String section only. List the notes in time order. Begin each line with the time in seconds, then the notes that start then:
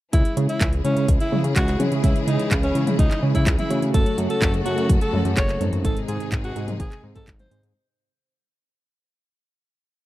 0.13 C#3 E3 G#3 E4 G#4
3.94 C#3 F#3 A3 F#4 A4
5.84 C3 D#3 G#3 D#4 G#4